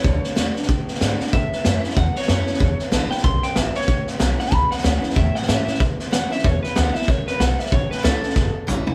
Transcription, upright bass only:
X:1
M:4/4
L:1/8
Q:"Swing" 1/4=188
K:A
V:1 name="Upright bass" clef=bass
D,, z E,, z F,, z G,, z | A,, z F,, z E,, z F,, z | E,, z A,,, z B,,, z G,,, z | z2 B,,, z C,, z D,, z |
E,, z G,, z F,, z =F,, z | E,, z D,, z3 B,,, z | A,,, z C,, z F,,, z G,,, z |]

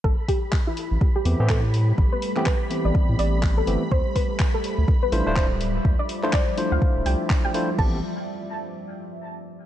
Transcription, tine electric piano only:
X:1
M:4/4
L:1/16
Q:"Swing 16ths" 1/4=124
K:Am
V:1 name="Tine electric piano"
z8 z2 [E,A,B,CG] [E,A,B,CG]2 z3 | z3 [E,A,B,CG] z2 [E,A,B,CG]8 [E,A,B,CG] z | z8 z2 [A,DEFc] [A,DEFc]2 z3 | z3 [A,DEFc] z2 [A,DEFc]8 [A,DEFc] z |
[E,A,B,CG]2 z12 z2 |]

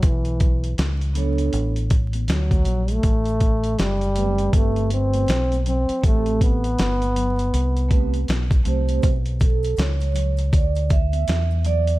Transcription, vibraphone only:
X:1
M:4/4
L:1/8
Q:"Swing 16ths" 1/4=80
K:Bphr
V:1 name="Vibraphone"
z3 [B,DA^c] z4 | z3 [A,B,CGB]3 z2 | [A,CGA] z4 [A,CGB] z [A,CGc] | z A ^c2 d e2 d |]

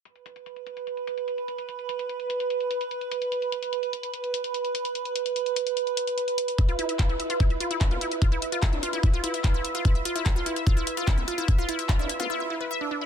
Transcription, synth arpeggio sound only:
X:1
M:4/4
L:1/16
Q:1/4=147
K:none
V:1 name="Synth arpeggio sound"
z16 | z16 | z16 | z16 |
e F E e F E e F E e F E e F E e | F E e F E e F E e F E e F E e F | E e F E e F E e F E e F E e F E | e F E e F E e F E e E B e D D E |]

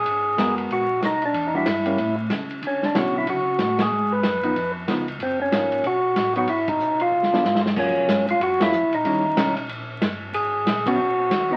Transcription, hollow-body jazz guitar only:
X:1
M:4/4
L:1/8
Q:"Swing" 1/4=187
K:F#
V:1 name="Hollow-body jazz guitar"
z2 [G,B,FA]3 z3 | z [=E,=G,=DF] z [G,A,C] z4 | z2 [=D,F,C=E]3 z3 | z3 [E,B,D] z2 [E,B,D] z |
z2 [E,A,D]2 z3 [F,B,D] | z4 z [E,B,=D] z2 | [F,A,EG]3 z2 [F,A,EG] z2 | [D,=G,C=E] z [D,G,CE] z4 z |
z3 [F,B,C] z3 [=E,B,D] |]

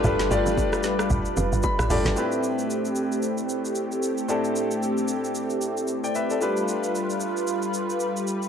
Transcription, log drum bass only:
X:1
M:4/4
L:1/16
Q:"Swing 16ths" 1/4=113
K:Am
V:1 name="Log drum bass" clef=bass
G,,,2 G,,,4 A,,,2 G,,, z F,,, G,,, z A,,, G,,, G,,, | z16 | z16 | z16 |]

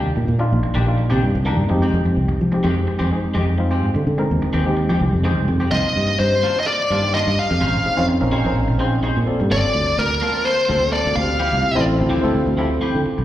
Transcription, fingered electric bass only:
X:1
M:4/4
L:1/16
Q:"Swing 16ths" 1/4=127
K:Cm
V:1 name="Fingered electric bass" clef=bass
E,, B,, B,,2 B,,, z B,,,3 C, G,, C,,2 G,, F,,2 | F,, F,, C,,2 F,2 F,,2 z F,, z2 F,,4 | A,, D, D,2 E,, z E,,3 F, C,, F,,2 C,, F,,2 | C,, z G,,2 G,,2 z4 G,,3 G,, z F,, |
B,,, A,,, z F,,2 B,,,2 B,,, B,,, B,,,3 z B,, z G,, | G,,, z D,,2 D,,2 z4 D,,3 D,, D,,2- | D,, C,, z =A,,,2 D,,2 D,, D,, D,,3 z D, z =B,,, |]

